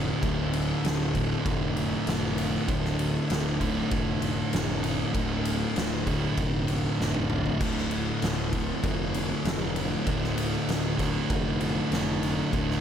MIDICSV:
0, 0, Header, 1, 5, 480
1, 0, Start_track
1, 0, Key_signature, -1, "minor"
1, 0, Tempo, 615385
1, 179, Time_signature, 4, 2, 24, 8
1, 9990, End_track
2, 0, Start_track
2, 0, Title_t, "Distorted electric guitar"
2, 0, Program_c, 0, 30
2, 0, Note_on_c, 0, 38, 66
2, 0, Note_on_c, 0, 45, 82
2, 0, Note_on_c, 0, 50, 88
2, 171, Note_off_c, 0, 45, 0
2, 173, Note_off_c, 0, 38, 0
2, 176, Note_on_c, 0, 38, 95
2, 187, Note_on_c, 0, 45, 93
2, 193, Note_off_c, 0, 50, 0
2, 196, Note_on_c, 0, 50, 101
2, 887, Note_off_c, 0, 45, 0
2, 888, Note_off_c, 0, 50, 0
2, 891, Note_on_c, 0, 50, 77
2, 905, Note_on_c, 0, 45, 83
2, 911, Note_off_c, 0, 38, 0
2, 914, Note_on_c, 0, 38, 74
2, 2085, Note_off_c, 0, 45, 0
2, 2090, Note_off_c, 0, 38, 0
2, 2093, Note_on_c, 0, 38, 91
2, 2105, Note_on_c, 0, 45, 93
2, 2112, Note_off_c, 0, 50, 0
2, 2115, Note_on_c, 0, 50, 107
2, 2803, Note_off_c, 0, 50, 0
2, 2805, Note_off_c, 0, 45, 0
2, 2806, Note_on_c, 0, 50, 88
2, 2817, Note_on_c, 0, 45, 79
2, 2825, Note_off_c, 0, 38, 0
2, 2828, Note_on_c, 0, 38, 65
2, 4000, Note_off_c, 0, 38, 0
2, 4001, Note_off_c, 0, 45, 0
2, 4003, Note_on_c, 0, 38, 107
2, 4018, Note_on_c, 0, 45, 92
2, 4026, Note_off_c, 0, 50, 0
2, 4029, Note_on_c, 0, 50, 90
2, 4721, Note_off_c, 0, 45, 0
2, 4723, Note_off_c, 0, 50, 0
2, 4726, Note_on_c, 0, 50, 74
2, 4739, Note_on_c, 0, 45, 75
2, 4746, Note_off_c, 0, 38, 0
2, 4749, Note_on_c, 0, 38, 65
2, 5922, Note_off_c, 0, 45, 0
2, 5928, Note_off_c, 0, 38, 0
2, 5931, Note_on_c, 0, 38, 94
2, 5942, Note_on_c, 0, 45, 95
2, 5948, Note_off_c, 0, 50, 0
2, 5951, Note_on_c, 0, 50, 97
2, 6644, Note_off_c, 0, 45, 0
2, 6648, Note_off_c, 0, 50, 0
2, 6651, Note_on_c, 0, 50, 93
2, 6661, Note_on_c, 0, 45, 79
2, 6670, Note_off_c, 0, 38, 0
2, 6673, Note_on_c, 0, 38, 72
2, 7840, Note_off_c, 0, 38, 0
2, 7843, Note_off_c, 0, 45, 0
2, 7843, Note_on_c, 0, 38, 85
2, 7856, Note_on_c, 0, 45, 100
2, 7859, Note_off_c, 0, 50, 0
2, 7862, Note_on_c, 0, 50, 101
2, 8560, Note_off_c, 0, 45, 0
2, 8562, Note_off_c, 0, 50, 0
2, 8565, Note_on_c, 0, 50, 87
2, 8575, Note_on_c, 0, 45, 81
2, 8587, Note_off_c, 0, 38, 0
2, 8590, Note_on_c, 0, 38, 72
2, 9758, Note_off_c, 0, 38, 0
2, 9760, Note_off_c, 0, 45, 0
2, 9761, Note_on_c, 0, 38, 93
2, 9772, Note_on_c, 0, 45, 88
2, 9779, Note_off_c, 0, 50, 0
2, 9782, Note_on_c, 0, 50, 93
2, 9990, Note_off_c, 0, 38, 0
2, 9990, Note_off_c, 0, 45, 0
2, 9990, Note_off_c, 0, 50, 0
2, 9990, End_track
3, 0, Start_track
3, 0, Title_t, "Distorted electric guitar"
3, 0, Program_c, 1, 30
3, 0, Note_on_c, 1, 38, 85
3, 0, Note_on_c, 1, 45, 86
3, 0, Note_on_c, 1, 50, 88
3, 169, Note_off_c, 1, 45, 0
3, 172, Note_off_c, 1, 38, 0
3, 197, Note_off_c, 1, 50, 0
3, 9990, End_track
4, 0, Start_track
4, 0, Title_t, "Picked electric bass"
4, 0, Program_c, 2, 34
4, 0, Note_on_c, 2, 29, 90
4, 80, Note_off_c, 2, 29, 0
4, 177, Note_on_c, 2, 26, 94
4, 558, Note_off_c, 2, 26, 0
4, 660, Note_on_c, 2, 26, 92
4, 1040, Note_off_c, 2, 26, 0
4, 1135, Note_on_c, 2, 29, 91
4, 1517, Note_off_c, 2, 29, 0
4, 1618, Note_on_c, 2, 29, 93
4, 1998, Note_off_c, 2, 29, 0
4, 2092, Note_on_c, 2, 26, 95
4, 2475, Note_off_c, 2, 26, 0
4, 2577, Note_on_c, 2, 26, 99
4, 2958, Note_off_c, 2, 26, 0
4, 3057, Note_on_c, 2, 29, 107
4, 3437, Note_off_c, 2, 29, 0
4, 3539, Note_on_c, 2, 29, 82
4, 3919, Note_off_c, 2, 29, 0
4, 4014, Note_on_c, 2, 26, 93
4, 4396, Note_off_c, 2, 26, 0
4, 4497, Note_on_c, 2, 26, 91
4, 4877, Note_off_c, 2, 26, 0
4, 4972, Note_on_c, 2, 29, 101
4, 5354, Note_off_c, 2, 29, 0
4, 5457, Note_on_c, 2, 29, 76
4, 5837, Note_off_c, 2, 29, 0
4, 5934, Note_on_c, 2, 26, 97
4, 6315, Note_off_c, 2, 26, 0
4, 6418, Note_on_c, 2, 26, 95
4, 6798, Note_off_c, 2, 26, 0
4, 6891, Note_on_c, 2, 29, 91
4, 7274, Note_off_c, 2, 29, 0
4, 7372, Note_on_c, 2, 29, 96
4, 7754, Note_off_c, 2, 29, 0
4, 7854, Note_on_c, 2, 26, 90
4, 8235, Note_off_c, 2, 26, 0
4, 8334, Note_on_c, 2, 26, 88
4, 8715, Note_off_c, 2, 26, 0
4, 8814, Note_on_c, 2, 29, 104
4, 9195, Note_off_c, 2, 29, 0
4, 9292, Note_on_c, 2, 29, 89
4, 9674, Note_off_c, 2, 29, 0
4, 9775, Note_on_c, 2, 26, 98
4, 9990, Note_off_c, 2, 26, 0
4, 9990, End_track
5, 0, Start_track
5, 0, Title_t, "Drums"
5, 177, Note_on_c, 9, 36, 124
5, 177, Note_on_c, 9, 51, 108
5, 255, Note_off_c, 9, 36, 0
5, 255, Note_off_c, 9, 51, 0
5, 417, Note_on_c, 9, 51, 83
5, 495, Note_off_c, 9, 51, 0
5, 659, Note_on_c, 9, 51, 93
5, 673, Note_on_c, 9, 38, 113
5, 737, Note_off_c, 9, 51, 0
5, 751, Note_off_c, 9, 38, 0
5, 896, Note_on_c, 9, 36, 77
5, 896, Note_on_c, 9, 51, 67
5, 974, Note_off_c, 9, 36, 0
5, 974, Note_off_c, 9, 51, 0
5, 1137, Note_on_c, 9, 36, 127
5, 1140, Note_on_c, 9, 51, 101
5, 1215, Note_off_c, 9, 36, 0
5, 1218, Note_off_c, 9, 51, 0
5, 1378, Note_on_c, 9, 51, 67
5, 1456, Note_off_c, 9, 51, 0
5, 1614, Note_on_c, 9, 51, 103
5, 1628, Note_on_c, 9, 38, 100
5, 1692, Note_off_c, 9, 51, 0
5, 1706, Note_off_c, 9, 38, 0
5, 1855, Note_on_c, 9, 51, 79
5, 1933, Note_off_c, 9, 51, 0
5, 2093, Note_on_c, 9, 51, 100
5, 2095, Note_on_c, 9, 36, 126
5, 2171, Note_off_c, 9, 51, 0
5, 2173, Note_off_c, 9, 36, 0
5, 2227, Note_on_c, 9, 38, 34
5, 2305, Note_off_c, 9, 38, 0
5, 2333, Note_on_c, 9, 51, 83
5, 2411, Note_off_c, 9, 51, 0
5, 2574, Note_on_c, 9, 51, 101
5, 2588, Note_on_c, 9, 38, 112
5, 2652, Note_off_c, 9, 51, 0
5, 2666, Note_off_c, 9, 38, 0
5, 2814, Note_on_c, 9, 51, 70
5, 2815, Note_on_c, 9, 36, 79
5, 2892, Note_off_c, 9, 51, 0
5, 2893, Note_off_c, 9, 36, 0
5, 3051, Note_on_c, 9, 51, 105
5, 3055, Note_on_c, 9, 36, 122
5, 3129, Note_off_c, 9, 51, 0
5, 3133, Note_off_c, 9, 36, 0
5, 3291, Note_on_c, 9, 51, 76
5, 3369, Note_off_c, 9, 51, 0
5, 3532, Note_on_c, 9, 51, 105
5, 3546, Note_on_c, 9, 38, 105
5, 3610, Note_off_c, 9, 51, 0
5, 3624, Note_off_c, 9, 38, 0
5, 3772, Note_on_c, 9, 51, 78
5, 3850, Note_off_c, 9, 51, 0
5, 4012, Note_on_c, 9, 51, 111
5, 4014, Note_on_c, 9, 36, 115
5, 4090, Note_off_c, 9, 51, 0
5, 4092, Note_off_c, 9, 36, 0
5, 4254, Note_on_c, 9, 51, 88
5, 4332, Note_off_c, 9, 51, 0
5, 4493, Note_on_c, 9, 51, 97
5, 4507, Note_on_c, 9, 38, 106
5, 4571, Note_off_c, 9, 51, 0
5, 4585, Note_off_c, 9, 38, 0
5, 4733, Note_on_c, 9, 51, 71
5, 4734, Note_on_c, 9, 36, 87
5, 4811, Note_off_c, 9, 51, 0
5, 4812, Note_off_c, 9, 36, 0
5, 4972, Note_on_c, 9, 51, 109
5, 4973, Note_on_c, 9, 36, 119
5, 5050, Note_off_c, 9, 51, 0
5, 5051, Note_off_c, 9, 36, 0
5, 5210, Note_on_c, 9, 51, 72
5, 5288, Note_off_c, 9, 51, 0
5, 5466, Note_on_c, 9, 38, 65
5, 5544, Note_off_c, 9, 38, 0
5, 5573, Note_on_c, 9, 48, 78
5, 5651, Note_off_c, 9, 48, 0
5, 5692, Note_on_c, 9, 45, 100
5, 5770, Note_off_c, 9, 45, 0
5, 5816, Note_on_c, 9, 43, 86
5, 5894, Note_off_c, 9, 43, 0
5, 5933, Note_on_c, 9, 49, 99
5, 5933, Note_on_c, 9, 51, 96
5, 5934, Note_on_c, 9, 36, 115
5, 6011, Note_off_c, 9, 49, 0
5, 6011, Note_off_c, 9, 51, 0
5, 6012, Note_off_c, 9, 36, 0
5, 6070, Note_on_c, 9, 38, 36
5, 6148, Note_off_c, 9, 38, 0
5, 6169, Note_on_c, 9, 51, 74
5, 6247, Note_off_c, 9, 51, 0
5, 6413, Note_on_c, 9, 51, 102
5, 6427, Note_on_c, 9, 38, 120
5, 6491, Note_off_c, 9, 51, 0
5, 6505, Note_off_c, 9, 38, 0
5, 6651, Note_on_c, 9, 51, 69
5, 6653, Note_on_c, 9, 36, 84
5, 6729, Note_off_c, 9, 51, 0
5, 6731, Note_off_c, 9, 36, 0
5, 6891, Note_on_c, 9, 51, 117
5, 6894, Note_on_c, 9, 36, 114
5, 6969, Note_off_c, 9, 51, 0
5, 6972, Note_off_c, 9, 36, 0
5, 7132, Note_on_c, 9, 51, 77
5, 7210, Note_off_c, 9, 51, 0
5, 7373, Note_on_c, 9, 51, 106
5, 7388, Note_on_c, 9, 38, 119
5, 7451, Note_off_c, 9, 51, 0
5, 7466, Note_off_c, 9, 38, 0
5, 7612, Note_on_c, 9, 51, 77
5, 7690, Note_off_c, 9, 51, 0
5, 7851, Note_on_c, 9, 51, 102
5, 7854, Note_on_c, 9, 36, 115
5, 7929, Note_off_c, 9, 51, 0
5, 7932, Note_off_c, 9, 36, 0
5, 7989, Note_on_c, 9, 38, 34
5, 8067, Note_off_c, 9, 38, 0
5, 8093, Note_on_c, 9, 51, 90
5, 8171, Note_off_c, 9, 51, 0
5, 8336, Note_on_c, 9, 51, 108
5, 8350, Note_on_c, 9, 38, 108
5, 8414, Note_off_c, 9, 51, 0
5, 8428, Note_off_c, 9, 38, 0
5, 8574, Note_on_c, 9, 51, 79
5, 8575, Note_on_c, 9, 36, 81
5, 8588, Note_on_c, 9, 38, 36
5, 8652, Note_off_c, 9, 51, 0
5, 8653, Note_off_c, 9, 36, 0
5, 8666, Note_off_c, 9, 38, 0
5, 8814, Note_on_c, 9, 36, 127
5, 8815, Note_on_c, 9, 51, 107
5, 8892, Note_off_c, 9, 36, 0
5, 8893, Note_off_c, 9, 51, 0
5, 9053, Note_on_c, 9, 51, 71
5, 9131, Note_off_c, 9, 51, 0
5, 9295, Note_on_c, 9, 51, 87
5, 9309, Note_on_c, 9, 38, 119
5, 9373, Note_off_c, 9, 51, 0
5, 9387, Note_off_c, 9, 38, 0
5, 9538, Note_on_c, 9, 51, 74
5, 9616, Note_off_c, 9, 51, 0
5, 9774, Note_on_c, 9, 36, 109
5, 9774, Note_on_c, 9, 51, 98
5, 9852, Note_off_c, 9, 36, 0
5, 9852, Note_off_c, 9, 51, 0
5, 9912, Note_on_c, 9, 38, 33
5, 9990, Note_off_c, 9, 38, 0
5, 9990, End_track
0, 0, End_of_file